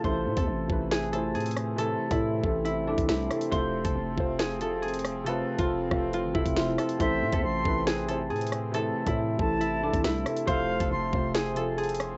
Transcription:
Already playing: F4 A4
0.02 A1 C3 E3 A3 C4 E4 C5, kick, closed hi-hat
0.07 A4
0.26 A2
0.37 E2 A4, kick, closed hi-hat
0.48 A1
0.68 A1 C3 E3 A3 E4, kick
0.72 B4
0.91 G#4, snare, closed hi-hat
1.11 C3 E3 A3 E4 A4, closed hi-hat
1.15 C5
1.34 A2 G#4, closed hi-hat
1.40 closed hi-hat
1.46 closed hi-hat
1.51 closed hi-hat
1.57 cross-stick, closed hi-hat
1.76 C3 E3 A3 E4 A4, closed hi-hat
1.81 A4
2.09 A2 C3 E3 A3 E4, kick, closed hi-hat
2.13 A4
2.41 A1 C3 E3 A3 E4, kick
2.46 A4
2.65 E4, closed hi-hat
2.85 C3 E3 A3 D4 E4
2.89 A4
2.98 G#1, kick, closed hi-hat
3.08 C2 E4, snare, closed hi-hat
3.28 C3 E3 A3 E4, cross-stick, closed hi-hat
3.33 A4
3.41 closed hi-hat
3.50 F1 C3 F3 A3 F4 C5, kick, closed hi-hat
3.54 A4
3.84 F1 A4, kick, closed hi-hat
3.96 F1
4.15 F1 C3 F3 A3 F4, kick
4.20 C5
4.39 G#4, snare, closed hi-hat
4.59 C3 F3 A3 F4 A4, closed hi-hat
4.63 A4
4.82 G#4, closed hi-hat
4.88 closed hi-hat
4.94 closed hi-hat
4.99 closed hi-hat
5.04 cross-stick, closed hi-hat
5.24 C3 F3 A3 F4 A4, closed hi-hat
5.28 B4
5.57 F1 C3 F3 A3 F4, kick, closed hi-hat
5.61 A4
5.89 F1 C3 F3 A3 F4, kick, cross-stick
5.94 A4
6.13 F4, closed hi-hat
6.24 G#1
6.33 F1 C3 F3 A3 E4 F4, kick
6.37 A4
6.46 F1, kick, closed hi-hat
6.57 F1 F4, snare, closed hi-hat
6.76 C3 F3 A3 F4 A4, cross-stick, closed hi-hat
6.81 A4
6.89 closed hi-hat
6.98 A1 C3 E3 A3 E4 C5 E5, kick, closed hi-hat
7.02 A4
7.22 A2
7.32 E2 A4, kick, closed hi-hat
7.43 A1 C6
7.63 A1 C3 E3 A3 E4, kick
7.68 B4
7.87 G#4, snare, closed hi-hat
8.07 C3 E3 A3 E4 A4, closed hi-hat
8.11 C5
8.30 A2 G#4, closed hi-hat
8.36 closed hi-hat
8.41 closed hi-hat
8.47 closed hi-hat
8.52 cross-stick, closed hi-hat
8.72 C3 E3 A3 E4 A4, closed hi-hat
8.76 A4
9.04 A2 C3 E3 A3 E4, kick, closed hi-hat
9.09 A4
9.37 A1 C3 E3 A3 E4 A5, kick
9.41 A4
9.60 E4, closed hi-hat
9.80 C3 E3 A3 D4 E4
9.85 A4
9.93 G#1, kick, closed hi-hat
10.04 C2 E4, snare, closed hi-hat
10.24 C3 E3 A3 E4, cross-stick, closed hi-hat
10.28 A4
10.37 closed hi-hat
10.46 F1 C3 F3 A3 C4 F4 C5 F5, kick, closed hi-hat
10.50 A4
10.80 F1 A4, kick, closed hi-hat
10.91 F1 C6
11.11 F1 C3 F3 A3 F4, kick
11.15 C5
11.34 G#4, snare, closed hi-hat
11.54 C3 F3 A3 F4 A4, closed hi-hat
11.59 A4
11.78 G#4, closed hi-hat
11.84 closed hi-hat
11.89 closed hi-hat
11.95 closed hi-hat
12.00 cross-stick, closed hi-hat

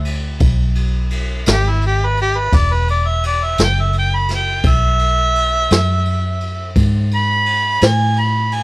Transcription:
Already playing: D2
0.05 ride
0.40 B1, kick, ride
0.75 ride
1.10 ride
1.46 G#1, snare, ride
1.53 G4
1.70 E4
1.81 ride
1.86 G4
2.07 B4
2.17 ride
2.22 G4
2.40 B4
2.52 E1, kick, ride
2.57 D5
2.73 B4
2.88 D5, ride
3.08 E5
3.23 D5, ride
3.44 E5
3.58 F#1, snare, ride
3.64 G5
3.81 E5
3.93 ride
3.99 G5
4.16 B5
4.28 snare, ride
4.35 G5
4.64 B1, kick, ride
4.69 E5
4.99 ride
5.35 ride
5.71 F#2, snare, ride
6.05 ride
6.40 ride
6.76 G#2, kick, ride
7.11 B5, ride
7.46 ride
7.81 A2, snare, ride
7.86 G#5
8.16 B5, ride
8.52 G#5, ride

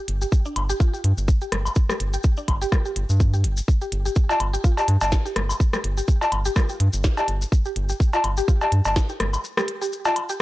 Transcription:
0.08 G1, closed hi-hat
0.22 G4, maracas
0.32 kick, maracas
0.45 D4, maracas
0.56 G1, closed hi-hat, low woodblock
0.69 G4, maracas
0.80 F4, kick, maracas
0.93 G4, maracas
1.04 G2, closed hi-hat
1.17 G1, maracas
1.28 kick, maracas
1.41 G4, maracas
1.52 G1, cross-stick, closed hi-hat
1.65 low woodblock, maracas
1.75 kick, maracas
1.89 G4, cross-stick, maracas
2.00 G1, closed hi-hat
2.13 G4, maracas
2.23 kick, maracas
2.37 D4, maracas
2.48 G1, kick, closed hi-hat, low woodblock
2.62 G4, maracas
2.72 F4, kick, cross-stick, maracas
2.85 G4, maracas
2.96 G1, closed hi-hat
3.09 G2, maracas
3.20 kick, maracas
3.33 G4, maracas
3.44 G1, closed hi-hat
3.57 maracas
3.68 kick, maracas
3.81 G4, maracas
3.92 G1, closed hi-hat
4.05 G4, maracas
4.16 kick, maracas
4.29 F4, cowbell, maracas
4.40 G1, closed hi-hat, low woodblock
4.53 G4, maracas
4.64 F4, kick, maracas
4.77 G4, cowbell, maracas
4.88 G2, closed hi-hat
5.01 G1, cowbell, maracas
5.12 kick, snare, maracas
5.25 G4, maracas
5.36 G1, cross-stick, closed hi-hat
5.49 low woodblock, maracas
5.60 kick, maracas
5.73 G4, cross-stick, maracas
5.84 G1, closed hi-hat
5.97 G4, maracas
6.08 kick, maracas
6.21 F4, cowbell, maracas
6.32 G1, closed hi-hat, low woodblock
6.45 G4, maracas
6.56 F4, kick, cross-stick, maracas
6.69 G4, maracas
6.80 G2, closed hi-hat
6.93 G1, maracas
7.04 kick, snare, maracas
7.17 G4, cowbell, maracas
7.28 G1, closed hi-hat
7.42 maracas
7.52 kick, maracas
7.65 G4, maracas
7.76 G1, closed hi-hat
7.89 G4, maracas
8.00 kick, maracas
8.13 F4, cowbell, maracas
8.24 G1, closed hi-hat, low woodblock
8.37 G4, maracas
8.48 F4, kick, maracas
8.61 G4, cowbell, maracas
8.72 G2, closed hi-hat
8.85 G1, cowbell, maracas
8.96 kick, snare, maracas
9.09 G4, maracas
9.20 G1, cross-stick, closed hi-hat
9.33 low woodblock, maracas
9.44 maracas
9.57 G4, cross-stick, maracas
9.68 closed hi-hat
9.81 G4, maracas
9.93 maracas
10.05 F4, cowbell, maracas
10.16 closed hi-hat, low woodblock
10.29 G4, maracas

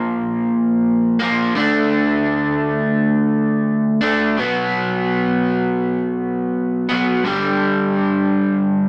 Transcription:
Already playing: A#2 F3 A#3
1.20 A#2 F3 A#3
1.55 D3 A3 D4
4.01 D3 A3 D4
4.37 B2 F#3 B3
6.89 B2 F#3 B3
7.24 G2 D3 G3

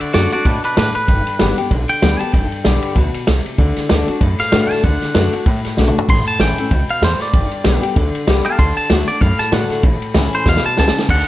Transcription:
Already playing: D3
0.00 F#4 D5, muted upright bass stroke, ride
0.13 F#2 D3 A3 D4 F#4 D5, snare, ride
0.32 D4 F#4 D5, muted upright bass stroke, ride
0.45 A2 B2 D4 B4, kick, ride
0.64 D4 B4, muted upright bass stroke, ride
0.77 A2 D4 B4, snare, ride
0.95 B4, muted upright bass stroke, ride
1.08 G1 G2, kick, ride
1.27 ride
1.39 G1 D3 G3 B3 G4, snare, ride
1.58 B3 G4, muted upright bass stroke, ride
1.71 B1 D3, kick, ride
1.89 G5, muted upright bass stroke, ride
2.02 D2 D3 G3 B3 G4, snare, ride
2.19 B3 G4 A5, muted upright bass stroke, ride
2.33 G1 G2 G5, kick, ride
2.52 muted upright bass stroke, ride
2.64 B1 D3 G3 B3 G4, snare, ride
2.82 muted upright bass stroke, ride
2.96 D2 B2, kick, ride
3.14 ride
3.27 C2 C3, snare, ride
3.46 ride
3.58 D2 D3, kick, ride
3.76 muted upright bass stroke, snare, ride
3.89 D2 D3 A3 D4 F#4, snare, ride
4.07 D4 F#4, muted upright bass stroke, ride
4.21 F#2 A2, kick, ride
4.39 F5, muted upright bass stroke, snare, ride
4.52 A2 D3 A3 D4 F#4, snare, ride
4.71 A5, muted upright bass stroke, snare, ride
4.83 D2 D3 F#5, kick, ride
5.02 muted upright bass stroke, snare, ride
5.15 F#2 D3 A3 D4 F#4, snare, ride
5.33 D4 F#4, ride
5.46 A2, kick, ride
5.64 muted upright bass stroke, snare, ride
5.77 B1 D3 A3 D4 F#4, snare
5.88 mid tom
5.96 D4 F#4, floor tom
6.09 A1 A2 C6, kick, ride, splash
6.27 A5, ride
6.39 A1 E3 A3 C#4 E4 G5, snare, ride
6.58 C#4 E4, muted upright bass stroke, ride
6.71 C#2 B2, kick, ride
6.89 F5, ride
7.02 E2 A2 C5, snare, ride
7.21 D5, snare, ride
7.33 G1 G2, kick, ride
7.51 muted upright bass stroke, ride
7.64 B1 D3 G3 B3 G4, snare, ride
7.82 B3 G4, ride
7.96 D2 D3, kick, ride
8.15 ride
8.27 C2 D3 G3 B3 G4, snare, ride
8.45 B3 G4 F5 A5, ride
8.58 D2 D3 A5 C6, kick, ride
8.77 A5, muted upright bass stroke, ride
8.90 D2 D3 A3 D4 F#4, snare, ride
9.08 D4 F#4 D5, muted upright bass stroke, ride
9.21 F#2 A2 F5, kick, ride
9.39 A5, muted upright bass stroke, snare, ride
9.52 A2 D3 A3 D4 F#4 F#5, snare, ride
9.70 muted upright bass stroke, snare, ride
9.83 A1 A2, kick, ride
10.02 muted upright bass stroke, ride
10.14 C#2 E3 A3 C#4 E4, snare, ride
10.33 C5, ride
10.46 E2 B2 F5, kick, snare
10.56 snare
10.65 A5, muted upright bass stroke
10.77 C#2 C#3 A5, snare
10.88 snare
10.98 snare
11.09 D2 D3 F#5, kick, crash

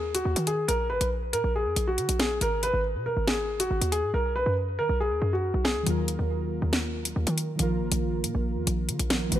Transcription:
Already playing: D#2 G#4
0.15 F#4, closed hi-hat
0.25 D#2
0.36 D#3, closed hi-hat
0.47 G#4, closed hi-hat
0.68 A#1 A#4, closed hi-hat
0.90 G#1 B4
1.01 A#1, closed hi-hat
1.33 A#2 A#4, closed hi-hat
1.44 A#1
1.56 G#4
1.66 F2
1.76 A#1, closed hi-hat
1.87 F#4
1.98 D3, closed hi-hat
2.09 A#1, closed hi-hat
2.20 G#4, snare, closed hi-hat
2.41 G#1 A#4, closed hi-hat
2.63 B4, closed hi-hat
2.74 G#1
2.95 B2
3.06 A#4
3.17 G#1
3.28 G#4, snare, closed hi-hat
3.60 F#4, closed hi-hat
3.71 G#1
3.81 D#2, closed hi-hat
3.92 G#4, closed hi-hat
4.03 G#2
4.14 B1 A#4
4.36 B4
4.46 F#2
4.79 D#3 A#4
4.89 B1
5.00 G#4
5.11 D#2
5.22 F#2
5.33 F#4
5.54 B1
5.64 G#4, snare
5.76 D2
5.83 D#2 D#3 F#3 A#3, closed hi-hat
5.88 F4 A#4
6.08 closed hi-hat
6.19 D#2
6.62 D#2
6.73 snare, closed hi-hat
7.05 closed hi-hat
7.16 D#2
7.27 D#3, closed hi-hat
7.38 closed hi-hat
7.56 A#1 D#3 F3 A#3, closed hi-hat
7.61 F4 A#4
7.81 G#1
7.92 A#1, closed hi-hat
8.24 A#2, closed hi-hat
8.35 A#1
8.56 F2
8.67 A#1, closed hi-hat
8.89 D3, closed hi-hat
8.99 A#1, closed hi-hat
9.09 D#3 F3 A#3 F4 A#4, snare, closed hi-hat
9.28 G#1 D#3 G#3 B3, closed hi-hat
9.33 F#4 B4

